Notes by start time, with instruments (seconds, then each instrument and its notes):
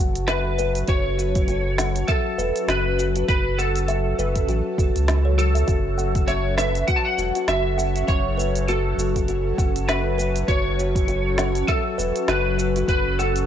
Already playing: sub bass F#1, analog synth pad F#3 C#4 F#4 A4, kalimba F#5
0.15 closed hi-hat, shaker
0.28 electric slide guitar B4, kalimba E5, snare, closed hi-hat, shaker
0.58 kalimba B4, shaker
0.75 closed hi-hat, shaker
0.88 sub bass F#1, kalimba F#4, electric slide guitar C#5, kick, closed hi-hat, shaker
1.18 kalimba F#4, shaker
1.35 kalimba F#4, kick, closed hi-hat, shaker
1.48 kalimba F#4, closed hi-hat, shaker
1.78 kalimba F#5, snare, shaker
1.96 closed hi-hat, shaker
2.08 electric slide guitar A4, kalimba E5, kick, closed hi-hat, shaker
2.38 sub bass E1, kalimba B4, shaker
2.56 closed hi-hat, shaker
2.68 sub bass F#1, kalimba F#4, electric slide guitar B4, snare, closed hi-hat, shaker
2.99 kalimba F#4, shaker
3.16 kalimba F#4, closed hi-hat, shaker
3.28 sub bass F#1, kalimba F#4, electric slide guitar B4, kick, closed hi-hat, shaker
3.58 electric slide guitar A4, kalimba F#5, shaker
3.76 closed hi-hat, shaker
3.88 kalimba E5, closed hi-hat, shaker
4.19 sub bass F#1, kalimba B4, shaker
4.36 kick, closed hi-hat, shaker
4.49 sub bass A1, kalimba F#4, closed hi-hat, shaker
4.78 sub bass F#1, kalimba F#4, kick, shaker
4.96 sub bass C#2, closed hi-hat, shaker
5.08 kalimba C#4, snare, closed hi-hat, shaker
5.25 kalimba C#5
5.38 kalimba F#4, electric slide guitar A4, shaker
5.55 kalimba E5, closed hi-hat, shaker
5.68 sub bass F#1, kalimba F#4, kick, closed hi-hat, shaker
5.98 kalimba F#5, shaker
6.15 kick, closed hi-hat, shaker
6.27 electric slide guitar C#5, kalimba E5, closed hi-hat, shaker
6.57 kalimba B4, electric slide guitar E5, snare, shaker
6.75 closed hi-hat, shaker
6.88 kalimba F#4, electric slide guitar F#5, kick, closed hi-hat, shaker
6.96 electric slide guitar A5
7.05 electric slide guitar F#5
7.18 sub bass E1, kalimba F#4, shaker
7.35 kalimba F#4, closed hi-hat, shaker
7.48 sub bass F#1, kalimba F#4, electric slide guitar E5, snare, closed hi-hat, shaker
7.78 kalimba F#5, shaker
7.96 closed hi-hat, shaker
8.08 sub bass F#1, electric slide guitar C#5, kalimba E5, kick, closed hi-hat, shaker
8.38 kalimba B4, shaker
8.56 closed hi-hat, shaker
8.68 kalimba F#4, electric slide guitar A4, closed hi-hat, shaker
8.97 sub bass F#1, kalimba F#4, shaker
9.16 kalimba F#4, kick, closed hi-hat, shaker
9.28 kalimba F#4, closed hi-hat, shaker
9.58 sub bass F#1, kalimba F#5, kick, shaker
9.76 closed hi-hat, shaker
9.89 electric slide guitar B4, kalimba E5, snare, closed hi-hat, shaker
10.18 kalimba B4, shaker
10.36 closed hi-hat, shaker
10.48 sub bass F#1, kalimba F#4, electric slide guitar C#5, kick, closed hi-hat, shaker
10.79 kalimba F#4, shaker
10.95 kalimba F#4, kick, closed hi-hat, shaker
11.08 kalimba F#4, closed hi-hat, shaker
11.38 kalimba F#5, snare, shaker
11.55 closed hi-hat, shaker
11.68 electric slide guitar A4, kalimba E5, kick, closed hi-hat, shaker
11.98 sub bass E1, kalimba B4, shaker
12.16 closed hi-hat, shaker
12.28 sub bass F#1, kalimba F#4, electric slide guitar B4, snare, closed hi-hat, shaker
12.58 kalimba F#4, shaker
12.76 kalimba F#4, closed hi-hat, shaker
12.88 sub bass F#1, kalimba F#4, electric slide guitar B4, kick, closed hi-hat, shaker
13.19 electric slide guitar A4, kalimba F#5, shaker
13.36 closed hi-hat, shaker